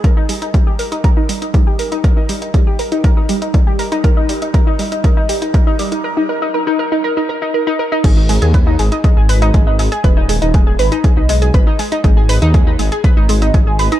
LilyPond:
<<
  \new Staff \with { instrumentName = "Synth arpeggio sound" } { \time 4/4 \key gis \minor \tempo 4 = 120 ais'16 dis'16 g16 dis'16 g16 g'16 ais'16 dis'16 ais'16 dis'16 g16 dis'16 g16 g'16 ais'16 dis'16 | ais'16 dis'16 g16 dis'16 g16 g'16 ais'16 dis'16 ais'16 dis'16 g16 dis'16 g16 g'16 ais'16 dis'16 | ais'16 dis'16 g16 dis'16 ais'16 dis'16 g16 dis'16 ais'16 dis'16 g16 dis'16 ais'16 dis'16 g16 dis'16 | ais'16 dis'16 ais'16 dis'16 ais'16 dis'16 ais'16 dis'16 ais'16 dis'16 ais'16 dis'16 ais'16 dis'16 ais'16 dis'16 |
<gis gis'>16 <dis' dis''>16 <gis gis'>16 <gis' gis''>16 <b' b''>16 <dis' dis''>16 <gis gis'>16 <dis' dis''>16 <gis gis'>16 <gis' gis''>16 <b' b''>16 <dis' dis''>16 <gis gis'>16 <dis' dis''>16 <gis gis'>16 <gis' gis''>16 | <b' b''>16 <dis' dis''>16 <gis gis'>16 <dis' dis''>16 <gis gis'>16 <gis' gis''>16 <b' b''>16 <dis' dis''>16 <gis gis'>16 <dis' dis''>16 <gis gis'>16 <gis' gis''>16 <b' b''>16 <dis' dis''>16 <gis gis'>16 <dis' dis''>16 | <gis gis'>16 <gis' gis''>16 <b' b''>16 <dis' dis''>16 <gis gis'>16 <dis' dis''>16 <gis gis'>16 <gis' gis''>16 <b' b''>16 <dis' dis''>16 <gis gis'>16 <dis' dis''>16 <gis gis'>16 <gis' gis''>16 <b' b''>16 <dis' dis''>16 | }
  \new Staff \with { instrumentName = "Detuned saw bass" } { \clef bass \time 4/4 \key gis \minor r1 | r1 | r1 | r1 |
gis,,8. dis,8. gis,,16 r8 gis,,8. gis,,8. r16 | dis,,8. dis,,8. gis,,16 r8 b,,8. gis,,16 r8. | gis,,8. dis,8. gis,,16 r8 gis,,8. gis,,8. r16 | }
  \new DrumStaff \with { instrumentName = "Drums" } \drummode { \time 4/4 <hh bd>8 hho16 hh16 <hh bd>8 hho16 hh16 <hh bd>8 hho16 hh16 <hh bd>8 hho16 hh16 | <hh bd>8 hho16 hh16 <hh bd>8 hho16 hh16 <hh bd>8 hho16 hh16 <hh bd>8 hho16 hh16 | <hh bd>8 hho16 hh16 <hh bd>8 hho16 hh16 <hh bd>8 hho16 hh16 <hh bd>8 hho16 hh16 | r4 r4 r4 r4 |
<cymc hh bd>8 hho16 hh16 <hh bd>8 hho16 hh16 <hh bd>8 hho16 hh16 <hh bd>8 hho16 hh16 | <hh bd>8 hho16 hh16 <hh bd>8 hho16 hh16 <hh bd>8 hho16 hh16 <hh bd>8 hho16 hh16 | <hh bd>8 hho16 hh16 <hh bd>8 hho16 hh16 <hh bd>8 hho16 hh16 <hh bd>8 hho16 hh16 | }
>>